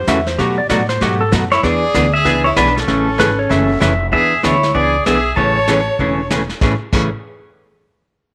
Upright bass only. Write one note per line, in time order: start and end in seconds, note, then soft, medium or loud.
0.08 0.38 E2 medium
0.39 0.69 B2 medium
0.70 1.00 A2 medium
1.01 1.32 G#2 medium
1.32 1.63 F#2 loud
1.63 1.94 E2 medium
1.95 2.25 D2 medium
2.26 2.56 C#2 medium
2.57 2.87 B1 medium
2.88 3.18 A1 medium
3.19 3.49 G#1 medium
3.50 3.81 F#1 medium
3.82 4.12 F1 loud
4.13 4.38 E2 medium
4.44 4.70 D2 medium
4.75 5.02 C#2 medium
5.07 5.33 B1 medium
5.37 5.87 A1 medium
5.99 6.49 E1 medium
6.62 6.72 A1 medium
6.93 7.11 A1 medium